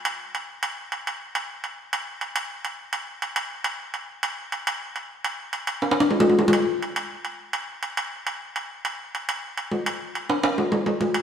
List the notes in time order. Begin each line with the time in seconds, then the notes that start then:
0.05 high timbale
0.35 high timbale
0.63 high timbale
0.92 high timbale
1.07 high timbale
1.35 high timbale
1.64 high timbale
1.93 high timbale
2.21 high timbale
2.36 high timbale
2.65 high timbale
2.93 high timbale
3.22 high timbale
3.36 high timbale
3.64 high timbale
3.94 high timbale
4.23 high timbale
4.52 high timbale
4.67 high timbale
4.96 high timbale
5.25 high timbale
5.53 high timbale
5.67 high timbale
5.82 high timbale
5.91 high timbale
6.00 high timbale
6.11 low timbale
6.20 low timbale
6.30 low timbale
6.39 low timbale
6.48 low timbale
6.53 high timbale
6.83 high timbale
6.96 high timbale
7.25 high timbale
7.53 high timbale
7.83 high timbale
7.97 high timbale
8.27 high timbale
8.56 high timbale
8.85 high timbale
9.15 high timbale
9.29 high timbale
9.58 high timbale
9.72 low timbale
9.86 high timbale
10.15 high timbale
10.30 high timbale
10.43 high timbale
10.58 low timbale
10.72 low timbale
10.86 low timbale
11.01 low timbale
11.14 high timbale